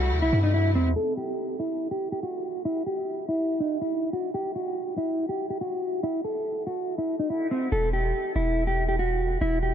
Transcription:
Already playing: C2 C3 G3 A3 E4 F#4
0.12 D#2
0.22 C2 E4
0.33 G2
0.43 D#4
0.54 E4
0.75 E2 C4
0.96 A4
1.17 G4
1.59 E4
1.91 G4
2.12 G4
2.23 F#4
2.65 E4
2.86 G4
3.29 E4
3.60 D#4
3.81 E4
4.13 F#4
4.34 G4
4.56 F#4
4.97 E4
5.29 G4
5.50 G4
5.61 F#4
6.03 E4
6.24 A4
6.67 F#4
6.98 E4
7.19 D#4
7.30 E4
7.51 C4
7.72 E1 A4
7.93 G4
8.36 E1 E4
8.67 G4
8.89 G4
8.99 F#4
9.41 E1 E4
9.63 G4

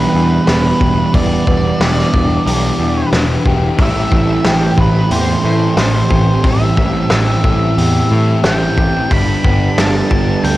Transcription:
Already playing: E2 B2 E3 G3 B3 D4 E4 G4 B4 D5 E5 B5
0.14 E2 B2 E3 D4
0.47 E1 E2 B2 E3 B3, snare, open hi-hat
0.80 E1 B2 E3 G4, kick
1.13 E1 E2 B2 E3 B3 D5, kick, open hi-hat
1.46 E1 B2 E3 B3, kick
1.79 E1 E2 B2 E3 G4, snare, open hi-hat
1.98 snare
2.14 E1 D4, kick
2.46 B1 G4, open hi-hat
2.79 E2 B2 E3 D4
3.12 E1 E2 B2 E3 B3, snare, open hi-hat
3.44 E1 B2 E3 G4, kick
3.77 A1 A2 E3 G3 A3 C4 E4 A5, kick, open hi-hat
3.83 E5
4.11 A1 E3 A3 C4 E5, kick
4.43 A1 A2 E3 A3 G4, snare, open hi-hat
4.48 G4
4.77 A1 E4 B4, kick
5.11 E2 G4 C5, open hi-hat
5.42 A2 E3 A3 E4
5.77 A1 A2 E3 A3 C4, snare, open hi-hat
6.09 A1 E3 A3 G4, kick
6.43 A1 A2 E3 G3 A3 E5, kick, open hi-hat
6.76 A1 E3 A3 C4, kick
7.10 A1 A2 E3 A3 G4, snare, open hi-hat
7.44 A1 E4, kick
7.77 E2 G4, open hi-hat
8.10 A2 E3 A3 E4
8.42 A1 A2 E3 A3 C4 G5, snare, open hi-hat
8.77 A1 E3 A3 G4, kick
9.10 G1 G2 D3 G3 B3 D4 B4 D5 B5, kick, open hi-hat
9.43 G1 D3 G3 B3, kick
9.76 G1 G2 D3 G3 A4 A5, snare, open hi-hat
10.11 G1 D4, kick
10.43 D2 A4 G5, open hi-hat

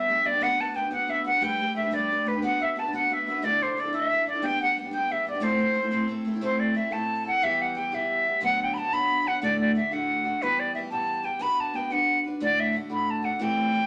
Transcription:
Already playing: G4 E5
0.08 G3 B3 D4 G4
0.24 G3 B3 D4 G4 D5
0.32 B3 D4 G4
0.41 B3 D4 F#4 B4 F#5
0.58 B3 D4 F#4 B4 A5
0.74 B3 D4 F#4 B4 G5
0.82 D4 F#4 B4
0.91 B3 D4 F#4 B4 F#5
1.07 B3 D4 F#4 B4 E5
1.24 B3 D4 F#4 B4 F#5
1.32 F#4 B4
1.36 D4
1.41 G3 A3 D4 G4 B4 G5
1.59 A3 D4 G4 B4
1.75 A3 D4 G4 B4 E5
1.82 D4 G4 B4
1.91 G3 A3 D4 G4 B4 D5
2.09 A3 D4 G4 B4
2.25 A3 D4 G4 B4
2.33 D4 G4 B4
2.42 B3 D4 F#4 B4 F#5
2.59 B3 D4 F#4 B4 E5
2.76 B3 D4 F#4 B4 A5
2.84 D4 F#4 B4
2.93 B3 D4 F#4 B4 F#5
3.10 B3 D4 F#4 B4 E5
3.27 B3 D4 F#4 B4 E5
3.34 D4 F#4 B4
3.42 D2 A2 D3 D4 E4 A4 D5
3.61 D3 D4 E4 A4 C5
3.76 D3 D4 E4 A4 D5
3.85 D3 D4 E4 A4
3.93 D2 A2 D3 D4 E4 A4 E5
4.10 D3 D4 E4 A4
4.26 D3 D4 E4 A4 D5
4.33 D3 D4 E4 A4
4.42 G3 B3 D4 G4 G5
4.59 G3 B3 D4 G4 F#5
4.76 G3 B3 D4 G4
4.84 B3 D4 G4
4.91 G3 B3 D4 G4 G5
5.09 G3 B3 D4 G4 E5
5.25 G3 B3 D4 G4 D5
5.33 B3 D4 G4
5.40 A2 A3 C4 E4 A4 C5
5.44 C5
5.59 A3 C4 E4 A4
5.74 A3 C4 E4 A4
5.82 C4 E4 A4
5.91 A2 A3 C4 E4 A4
6.08 A3 C4 E4 A4
6.25 A3 C4 E4 A4
6.34 C4 E4 A4
6.41 A2 A3 C4 E4 A4 C5
6.60 D5
6.75 A3 C4 E4 A4 E5
6.91 A2 A3 C4 E4 A4 A5
7.25 C4 E4 A4 F#5
7.42 E3 G3 B3 G4 E5
7.61 F#5
7.75 E3 G3 B3 G4 G5
7.92 E3 G3 B3 G4 E5
8.25 G3 B3 G4
8.41 D2 D3 F#3 B3 D4 F#4 F#5
8.63 G5
8.74 F#3 B3 B5
8.78 D4 F#4 A5
8.92 D2 D3 F#3 B3 D4 F#4 B5
9.25 F#3 B3 D4 F#4 F#5
9.42 D2 A2 D3 A3 D4 F#4 D5
9.61 D5
9.75 D3 A3 D4 F#4 E5
9.91 D2 A2 D3 A3 D4 F#4 F#5
10.24 D3 A3 D4 F#4
10.41 E3 G3 B3 G4 B4
10.59 D5
10.75 E3 G3 B3 G4 E5
10.90 E3 G3 B3 G4 A5
11.23 G3 B3 G4 G5
11.39 B3 D4 F#4 B4 B5
11.60 A5
11.74 B3 D4 F#4 B4 G5
11.90 B3 D4 F#4 B4 F#5
12.24 D4 F#4 B4
12.40 D2 A2 D3 A3 D4 F#4 D5
12.60 E5
12.73 D3 A3 D4 F#4
12.89 D2 A2 D3 A3 D4 F#4 B5
13.10 A5
13.22 D3 A3 D4 F#4 F#5
13.39 A2 E3 A3 C4 G4 G5
13.72 E3 A3 C4 G4

